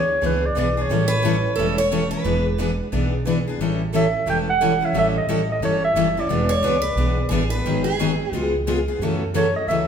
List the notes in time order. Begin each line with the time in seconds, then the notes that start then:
Already playing: D2 C#5
0.22 C#2 E3 B3 D4 G#4 B4
0.26 B4
0.46 D5
0.55 B1 E3 B3 D4 G#4 B4 D5
0.77 B3 D4 G#4
0.82 C#5
0.89 A1 E3 G3 C#4 E4 A4
1.08 B4
1.25 E3 G3 C#4 E4 A4
1.56 E1 E3 G3 C#4 E4 A4
1.60 A4
1.78 C#5
1.92 E3 G3 C#4 E4 A4
2.11 C#4 E4 A4 B4
2.24 E1 E3 B3 D4 G#4 B4
2.59 E3 B3 D4 G#4 B4
2.92 B1 E3 B3 D4 G#4 B4
3.26 E3 B3 D4 G#4 B4
3.47 B3 D4 G#4
3.59 A1 E3 G3 C#4 E4 A4
3.94 E3 G3 C#4 E4 A4 E5
4.26 E1 E3 G3 C#4 E4 A4 G5
4.50 F#5
4.61 E3 G3 C#4 E4 A4
4.81 C#4 E4 A4
4.85 E5
4.93 A1 E3 G3 C#4 E4 A4
4.98 E5
5.17 D#5
5.26 A1 E3 G3 C#4 E4 A4
5.52 D#5
5.60 G1 E3 G3 C#4 E4 A4
5.65 C#5
5.84 E5
5.93 F#1 E3 G3 C#4 E4 A4
6.17 C#4 E4 A4 D5
6.27 E1 E3 B3 D4 G#4 B4
6.49 C#5
6.61 C#2 E3 B3 D4 G#4 B4
6.82 B4
6.95 B1 E3 B3 D4 G#4 B4
7.29 A1 E3 B3 D4 G#4 B4
7.50 D4 G#4 B4
7.55 B3
7.64 G#1 D#3 F#3 B3 D#4 G#4
7.84 G#4
7.99 D#3 F#3 B3 D#4 G#4
8.31 C#2 C#3 G#3 B3 F4 F#4 G#4
8.67 C#3 G#3 B3 F4 G#4
8.88 B3 F4 G#4
8.99 F#2 C#3 E3 F#3 E4 A4
9.03 A3 C#4 F#4
9.34 C#3 E3 F#3 A3 C#4 E4 F#4 A4 C#5
9.56 D#5
9.67 C#2 C#3 E3 F#3 A3 C#4 E4 A4 E5
9.71 F#4